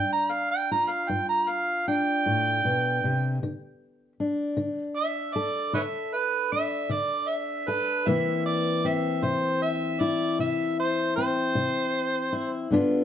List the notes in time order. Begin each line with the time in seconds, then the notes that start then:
Already playing: G2 D4 G5
0.13 A#5
0.31 F5
0.51 G5
0.71 F4 A#5
0.90 F5
1.09 G2 G5
1.29 A#5
1.49 F5
1.88 D4 G5
2.26 A2
2.65 B2
3.04 C3
3.43 D3
4.20 D4
4.57 D3
4.97 E5
5.34 A4 D5
5.73 D3 B4 C#5 E5
6.13 B4
6.52 D4 E5
6.89 D3 D5
7.28 E5
7.68 A4 B4
8.07 C3 E3 A#3 C4 E4 E5
8.46 D5
8.85 C4 E5
9.23 C3 C5
9.62 E5
10.01 E4 D5
10.39 C3 E5
10.80 C5
11.16 C4 C5
11.55 C3
12.33 E4
12.71 G2 D3 B3 D4 F4